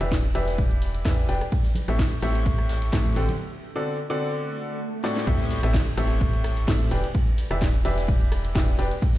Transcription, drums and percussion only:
0.01 closed hi-hat, tambourine, shaker
0.11 kick, snare, closed hi-hat, ride, tambourine, shaker
0.23 closed hi-hat, tambourine, shaker
0.35 open hi-hat, ride, tambourine, shaker
0.47 snare, closed hi-hat, tambourine, shaker
0.58 kick, closed hi-hat, ride, tambourine, shaker
0.71 closed hi-hat, tambourine, shaker
0.82 open hi-hat, tambourine, shaker
0.94 closed hi-hat, ride, tambourine, shaker
1.05 kick, cross-stick, snare, closed hi-hat, ride, shaker
1.18 closed hi-hat, shaker
1.28 open hi-hat, ride, tambourine, shaker
1.41 cross-stick, closed hi-hat, tambourine, shaker
1.52 kick, closed hi-hat, ride, tambourine, shaker
1.64 snare, closed hi-hat, tambourine, shaker
1.75 open hi-hat, ride, tambourine, high conga, shaker
1.88 cross-stick, closed hi-hat, tambourine, shaker
1.99 kick, snare, closed hi-hat, ride, shaker
2.12 closed hi-hat, tambourine, shaker
2.22 open hi-hat, ride, tambourine, shaker
2.34 closed hi-hat, ride, tambourine, shaker
2.45 kick, closed hi-hat, ride, tambourine, shaker
2.58 cross-stick, closed hi-hat, tambourine, shaker
2.69 snare, open hi-hat, ride, tambourine, shaker
2.82 closed hi-hat, ride, tambourine, shaker
2.92 kick, snare, closed hi-hat, ride, shaker
3.05 closed hi-hat, ride, tambourine, high conga, shaker
3.15 open hi-hat, ride, tambourine, shaker
3.29 closed hi-hat, ride, tambourine, high conga, shaker
5.04 snare
5.16 snare
5.27 kick, closed hi-hat, crash, ride, shaker
5.40 snare, closed hi-hat, shaker
5.51 open hi-hat, ride, shaker
5.63 cross-stick, closed hi-hat, shaker
5.74 kick, snare, closed hi-hat, ride, shaker
5.87 closed hi-hat, shaker
5.97 open hi-hat, ride, shaker
6.10 closed hi-hat, ride, shaker
6.21 kick, closed hi-hat, ride, shaker
6.33 closed hi-hat, shaker
6.44 cross-stick, open hi-hat, ride, shaker
6.57 closed hi-hat, ride, shaker
6.67 kick, snare, closed hi-hat, ride, shaker
6.80 closed hi-hat, ride, shaker
6.91 open hi-hat, ride, shaker
7.04 closed hi-hat, ride, shaker
7.15 kick, closed hi-hat, ride, shaker
7.27 closed hi-hat, shaker
7.38 open hi-hat, ride, shaker
7.51 cross-stick, closed hi-hat, shaker
7.61 kick, snare, closed hi-hat, ride, shaker
7.74 closed hi-hat, shaker
7.85 open hi-hat, ride, shaker
7.98 snare, closed hi-hat, shaker
8.08 kick, closed hi-hat, ride, shaker
8.21 closed hi-hat, shaker
8.32 cross-stick, open hi-hat, shaker
8.44 closed hi-hat, ride, shaker
8.55 kick, snare, closed hi-hat, ride, shaker
8.68 closed hi-hat, shaker
8.79 open hi-hat, ride, shaker
8.91 closed hi-hat, shaker
9.02 kick, closed hi-hat, ride, shaker
9.14 snare, closed hi-hat

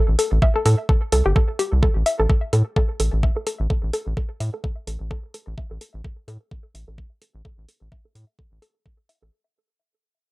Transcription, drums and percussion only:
0.19 open hi-hat
0.42 kick
0.66 open hi-hat
0.89 kick
1.12 open hi-hat
1.36 kick
1.59 open hi-hat
1.83 kick
2.06 open hi-hat
2.30 kick
2.53 open hi-hat
2.76 kick
3.00 open hi-hat
3.23 kick
3.47 open hi-hat
3.70 kick
3.93 open hi-hat
4.17 kick
4.40 open hi-hat
4.64 kick
4.87 open hi-hat
5.11 kick
5.34 open hi-hat
5.58 kick
5.81 open hi-hat
6.04 kick
6.28 open hi-hat
6.51 kick
6.75 open hi-hat
6.98 kick
7.22 open hi-hat
7.45 kick
7.69 open hi-hat
7.92 kick
8.15 open hi-hat
8.39 kick
8.62 open hi-hat
8.86 kick
9.09 open hi-hat

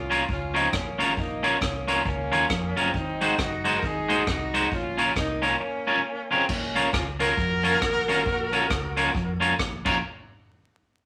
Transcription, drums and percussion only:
0.12 closed hi-hat
0.29 kick
0.56 closed hi-hat
0.73 kick, cross-stick
1.00 closed hi-hat
1.17 kick
1.44 closed hi-hat
1.61 kick, cross-stick
1.88 closed hi-hat
2.05 kick
2.33 closed hi-hat
2.50 kick, cross-stick
2.77 closed hi-hat
2.94 kick
3.21 closed hi-hat
3.38 kick, cross-stick
3.65 closed hi-hat
3.83 kick
4.10 closed hi-hat
4.27 kick, cross-stick
4.54 closed hi-hat
4.72 kick
4.98 closed hi-hat
5.16 kick, cross-stick
5.43 closed hi-hat
6.49 kick, crash
6.76 closed hi-hat
6.93 kick, cross-stick
7.20 closed hi-hat
7.37 kick
7.65 closed hi-hat
7.82 kick, cross-stick
8.09 closed hi-hat
8.26 kick
8.53 closed hi-hat
8.70 kick, cross-stick
8.97 closed hi-hat
9.15 kick
9.42 closed hi-hat
9.59 kick, cross-stick
9.86 kick, crash

